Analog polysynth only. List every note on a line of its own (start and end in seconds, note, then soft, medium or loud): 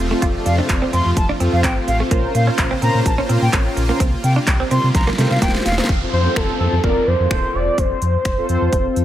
0.11 0.89 C4 loud
0.11 0.89 F4 medium
0.11 0.89 A4 medium
0.11 0.89 D5 loud
1.40 1.89 C4 medium
1.40 1.90 F4 medium
1.40 1.90 A4 medium
1.40 1.90 C5 medium
2.00 2.09 C4 medium
2.00 2.09 F4 medium
2.00 2.09 A4 medium
2.00 2.09 C5 medium
2.11 2.71 C#4 loud
2.11 2.71 F4 medium
2.11 2.71 A#4 medium
2.11 2.71 C5 loud
2.82 3.12 C#4 medium
2.82 3.12 F4 medium
2.82 3.12 A#4 medium
2.82 3.12 C5 loud
3.18 3.47 C#4 medium
3.18 3.47 F4 medium
3.18 3.47 A#4 medium
3.18 3.47 C5 medium
3.53 3.83 C#4 medium
3.53 3.83 F4 medium
3.53 3.83 A#4 medium
3.53 3.83 C#5 medium
3.89 4.00 C#4 loud
3.89 4.00 F4 medium
3.89 4.00 A#4 medium
3.89 4.00 C5 loud
5.18 5.67 F4 medium
5.18 5.68 G4 medium
5.18 5.68 A#4 medium
5.18 5.68 C5 medium
5.78 5.87 F4 medium
5.78 5.87 G4 medium
5.78 5.87 A#4 medium
5.78 5.87 C5 medium
6.01 6.20 C4 medium
6.01 6.21 F4 medium
6.01 6.21 A4 medium
6.01 6.21 C5 medium
6.25 6.74 C4 medium
6.25 6.74 F4 medium
6.25 6.74 A4 medium
6.25 6.74 C5 loud
6.83 7.13 C4 medium
6.83 7.13 F4 medium
6.83 7.14 A4 medium
6.83 7.14 D5 loud
7.20 7.98 C4 medium
7.20 7.98 F4 medium
7.20 7.98 A4 medium
7.20 7.98 C5 medium
8.37 8.47 C4 loud
8.37 8.47 F4 medium
8.37 8.47 A4 medium
8.37 8.47 C5 loud
8.48 9.05 C4 loud
8.48 9.05 F4 medium
8.48 9.05 A4 medium
8.48 9.05 C5 loud